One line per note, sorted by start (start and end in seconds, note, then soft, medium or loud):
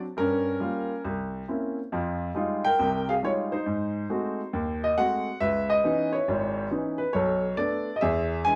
0.17 0.54 G2 medium
0.17 1.01 C#4 medium
0.17 1.00 A#4 loud
0.60 0.90 G3 medium
0.60 0.91 A#3 soft
0.60 0.91 F4 medium
1.05 1.42 C2 medium
1.48 1.78 A#3 soft
1.48 1.78 C4 soft
1.48 1.78 C#4 soft
1.48 1.78 E4 soft
1.92 2.29 F2 medium
1.92 2.29 F3 medium
2.35 2.65 G3 medium
2.35 2.65 G#3 soft
2.35 2.65 D#4 soft
2.35 2.66 F4 medium
2.65 3.05 A#4 medium
2.65 3.09 G5 loud
2.79 3.17 C2 medium
2.79 3.17 C3 medium
3.09 3.15 G#4 medium
3.09 3.14 F5 medium
3.23 3.53 G3 soft
3.23 3.53 G#3 soft
3.23 3.51 D#4 soft
3.23 3.53 F4 medium
3.23 3.31 C#5 medium
3.52 4.93 D#4 medium
3.52 4.93 C5 medium
3.66 4.04 G#2 medium
4.10 4.40 G#3 soft
4.10 4.40 A3 medium
4.10 4.40 C4 soft
4.10 4.40 F#4 medium
4.53 4.91 D#2 medium
4.84 4.98 D#5 medium
4.97 5.27 G#3 soft
4.97 5.27 A3 soft
4.97 5.27 C4 soft
4.97 5.27 F#4 soft
4.97 5.38 F#5 loud
5.40 5.78 C#2 medium
5.40 6.24 B4 medium
5.40 5.67 E5 loud
5.70 6.14 D#5 medium
5.84 6.14 E3 medium
5.84 6.14 B3 soft
5.84 6.14 C#4 soft
5.84 6.15 D#4 medium
6.12 6.97 E4 medium
6.12 6.67 C#5 medium
6.28 6.66 G#1 medium
6.28 6.66 G#2 medium
6.71 7.01 E3 soft
6.71 7.01 B3 soft
6.71 7.01 C#4 soft
6.71 7.02 D#4 medium
6.98 7.14 B4 medium
7.13 7.52 B1 medium
7.13 7.98 A4 medium
7.13 7.54 C#5 medium
7.57 7.88 A3 medium
7.57 7.88 B3 soft
7.57 7.89 D4 medium
7.57 7.98 D5 medium
7.96 8.01 D#5 medium
8.01 8.40 E2 medium
8.01 8.55 G#4 medium
8.01 8.46 E5 medium
8.45 8.55 E3 soft
8.45 8.55 G#3 soft
8.45 8.55 D4 medium
8.45 8.55 G#5 loud